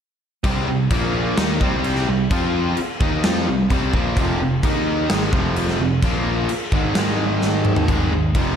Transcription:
0.44 C2 C3 G3 C4, kick, crash
0.68 C2 C3 G3
0.90 A#1 A#2 F3 A#3, kick, crash
1.37 D#2 D#3 A#3 D#4, snare, crash
1.61 C2 C3 G3 C4, kick
1.84 crash
1.96 snare
2.09 C2 C3 G3
2.31 F2 F3 C4 F4, kick, crash
2.77 muted overdriven electric guitar stroke, muted picked electric bass stroke, muted distorted electric guitar stroke, crash
3.01 D#2 D#3 A#3 D#4, kick
3.24 F2 F3 C4 F4, snare, crash
3.49 C2 C3 G3
3.70 C2 C3 G3 C4, kick, crash
3.93 A#1 A#2 F3 A#3, kick
4.17 F1 F2 C3 F3, kick, crash
4.40 F1 F2 C3
4.63 D#2 D#3 A#3 D#4, kick, crash
5.10 G#1 G#2 D#3 G#3, snare, crash
5.33 F1 F2 C3 F3, kick
5.56 crash
5.68 snare
5.80 F1 F2 C3
6.02 A#1 A#2 F3 A#3, kick, crash
6.49 muted overdriven electric guitar stroke, muted distorted electric guitar stroke, crash
6.72 G#1 G#2 D#3 G#3, kick
6.95 G#1 G#2 D#3 G#3, snare, crash
7.42 snare
7.65 mid tom
7.76 floor tom
7.88 G#1 G#2 D#3 G#3, kick, crash
8.12 G#1 G#2 D#3
8.35 F1 F2 C3 F3, kick, crash

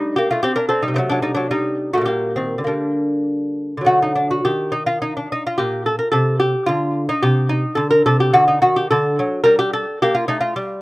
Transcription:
Already playing: G3 A3 D#4
0.16 A#3 G4
0.31 A3 F4
0.43 C4 G4
0.56 D4 A#4
0.69 C4 A4
0.82 G3 D#4
0.88 C3
0.94 F#3 A3 C4
1.09 F#3 D4
1.22 G3 D#4
1.35 F#3 D4
1.51 G3 D#4
1.93 A3 F#4
1.98 A#2 G3
2.05 A#3 G4
2.36 D#3 C4
2.58 D3
2.64 G3 A#3 D4
3.77 D3 F#3
3.85 A3 F#4
4.02 D#4
4.16 D4
4.31 F#4
4.45 D#3 G4
4.72 D#4
4.86 F4
5.02 D#4
5.17 D4
5.32 D#4
5.47 F4
5.58 A#2 G4
5.86 A4
5.99 A#4
6.12 C3 A4
6.40 G4
6.66 D3 F4
7.09 D#4
7.22 C3 G4
7.49 D#4
7.75 D3 A4
7.91 A#4
8.06 C3 A4
8.20 G4
8.33 D3 F#4
8.48 D#4
8.62 D#3 F#4
8.76 G4
8.91 D3 A4
9.19 F#3
9.44 G3 A#4
9.59 G4
9.73 A4
10.02 A#3 G4
10.15 F4
10.28 A3 D#4
10.41 F4
10.56 G3

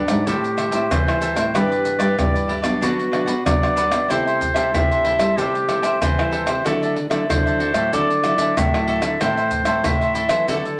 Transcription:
Already playing: D3 F#3 B3 D4 D5
0.08 G#2 G4 B4 F#5, pandeiro, tamborim, maracas
0.27 A2 G3 C4 E4 G4 A4 C5 E5 G5, pandeiro, maracas, surdo
0.44 muted cavaquinho stroke, pandeiro, maracas
0.57 A4 C5 E5 G5, pandeiro, tamborim, maracas
0.71 A2 G3 C4 E4 C5 E5 G5, pandeiro, maracas
0.91 E3 C5, pandeiro, tamborim, maracas, surdo
1.07 G3 C4 E4 C5 E5 G5, pandeiro, tamborim, maracas
1.21 A4 C5 E5 G5, pandeiro, maracas
1.35 A2 C5 E5 G5, pandeiro, tamborim, maracas
1.54 G2 E3 B3 D4 E4 G4 B4 D5, pandeiro, tamborim, maracas, surdo
1.71 G4 B4 D5, pandeiro, maracas
1.85 muted cavaquinho stroke, pandeiro, maracas
1.99 G2 G4 B4 D5, pandeiro, tamborim, maracas
2.19 G2 E3 B3 D4 D5, pandeiro, tamborim, maracas, surdo
2.34 G4 B4 D5, pandeiro, maracas
2.48 E4 G4 B4 D5, pandeiro
2.62 B2 F#3 B3 D4 G4 B4 D5, pandeiro, tamborim, maracas
2.81 B2 D4 F#4 B4 D5 F#5, pandeiro, maracas, surdo
2.98 muted cavaquinho stroke, pandeiro, maracas
3.11 F#3 B3 D4 B4 D5 F#5, pandeiro, tamborim
3.26 B2 B4 D5 F#5, pandeiro, maracas
3.45 F#2 F#3 B3 D4 D5, pandeiro, tamborim, maracas, surdo
3.62 F#3 B3 D4 B4 D5 F#5, pandeiro, tamborim, maracas
3.75 D4 B4 D5 F#5, pandeiro, maracas
3.90 B2 B4 D5 F#5, pandeiro, tamborim, maracas
4.08 C3 G3 A3 E4 A4 C5 E5, pandeiro, tamborim, maracas, surdo
4.26 A4 C5 E5, pandeiro, maracas
4.40 muted cavaquinho stroke, pandeiro, maracas, surdo
4.54 C3 A4 C5 E5, pandeiro, tamborim, maracas
4.74 G2 C3 G3 A3 E4 E5, pandeiro, tamborim, maracas, surdo
4.90 A4 C5 E5, pandeiro, maracas
5.04 E4 A4 C5 E5, pandeiro
5.18 G3 A3 E4 A4 C5 E5, pandeiro, tamborim, maracas
5.37 C3 G4 A4 C5 E5 G5, pandeiro, maracas, surdo
5.54 muted cavaquinho stroke, pandeiro, maracas
5.68 G3 A3 E4 A4 C5 E5 G5, pandeiro, tamborim, maracas
5.82 C3 C5 E5 G5, pandeiro, maracas
6.01 C3 E3 C5, pandeiro, tamborim, maracas, surdo
6.18 G3 A3 E4 C5 E5 G5, pandeiro, tamborim, maracas
6.31 A4 C5 E5 G5, pandeiro
6.46 C3 C5 E5 G5, pandeiro, tamborim, maracas
6.64 D3 F#3 A3 E4 F#4 A4 D5 E5, pandeiro, tamborim, maracas, surdo
6.82 A4 D5 E5, pandeiro, maracas
6.95 muted cavaquinho stroke, pandeiro
7.10 D3 F#3 A3 E4 A4 D5 E5, pandeiro, tamborim, maracas
7.29 A2 D3 F#3 A3 E4 C5, pandeiro, tamborim, maracas, surdo
7.46 A4 D5 E5, pandeiro, maracas
7.59 F#4 A4 D5 E5, pandeiro
7.74 A2 F#3 A3 E4 A4 D5 E5, pandeiro, tamborim, maracas
7.92 D3 F#4 A4 D5 E5, pandeiro, maracas, surdo
8.10 muted cavaquinho stroke, pandeiro, maracas
8.23 F#3 A3 E4 F#4 A4 D5 E5, pandeiro, tamborim, maracas
8.38 D3 A4 D5 E5, pandeiro, maracas
8.57 A2 E5, pandeiro, tamborim, maracas, surdo
8.73 F#3 A3 E4 A4 D5 E5, pandeiro, tamborim, maracas
8.87 F#4 A4 D5 E5, pandeiro
9.02 D3 A4 D5 E5, pandeiro, tamborim, maracas
9.20 A2 E3 C4 E4 A4 C5 E5, pandeiro, tamborim, maracas, surdo
9.37 A4 C5 E5, pandeiro, maracas
9.51 muted cavaquinho stroke, pandeiro, maracas, surdo
9.65 A2 A4 C5 E5, pandeiro, tamborim, maracas
9.84 A2 E3 C4 E4 E5, pandeiro, tamborim, maracas, surdo
10.01 A4 C5 E5, pandeiro, maracas
10.14 E4 A4 C5 E5, pandeiro, maracas
10.28 E3 F#3 A3 E4 A4 C5 E5, pandeiro, tamborim, maracas
10.47 D3 F#4 A4 D5 E5, pandeiro, maracas, surdo
10.65 muted cavaquinho stroke, pandeiro, maracas

